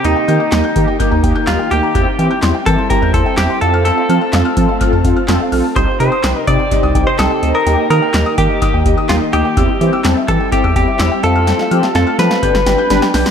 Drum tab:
HH |x-x-x-x-x-x-x-x-|x-x-x-x-x-x-x-x-|x-x-x-x-x-x-x-o-|x-x-x-x-x-x-x-x-|
CP |----x-------x---|----x-------x---|----x-------x---|----x-------x---|
SD |----o-------o---|----o-------o---|----o-------o---|----o-------o---|
BD |------o-o-o-----|o-----o-o-o-----|------o-o-o-----|o-----o-o-o-----|

HH |x-x-x-x-x-x-x-x-|x-x-x-x-x-x-x-x-|x-x-x-x-x-x-x-o-|
CP |----x-------x---|----x-------x---|----------------|
SD |----o-------o---|----o-------o---|oo-oo-oo-oo-oooo|
BD |------o-o-o-----|o-----o-o-o-----|--------o-------|